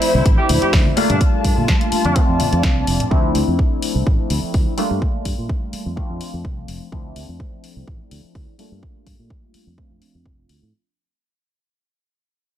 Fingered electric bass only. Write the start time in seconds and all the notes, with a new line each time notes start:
0.15 C2
0.26 A1
0.49 D2
0.62 muted fingered electric bass stroke
0.73 D2
1.10 G2
1.45 G2
1.57 A#2
1.92 muted fingered electric bass stroke
2.05 F2
2.29 F2
2.53 F2
2.87 F1
3.11 D2
3.35 D2
3.48 F2
3.95 C2
4.30 D2
4.43 muted fingered electric bass stroke
4.54 D2
4.91 G2
5.26 G2
5.38 A#2
5.73 muted fingered electric bass stroke
5.86 F2
6.10 F2
6.34 F2
6.68 F1
6.92 D2
7.16 D2
7.29 F2
7.76 C2
7.87 A1
8.11 D2
8.35 D2
8.72 G2
9.07 G2
9.19 A#2
9.54 muted fingered electric bass stroke
9.67 F2
9.91 F2
10.15 F2
10.49 D2
10.62 A2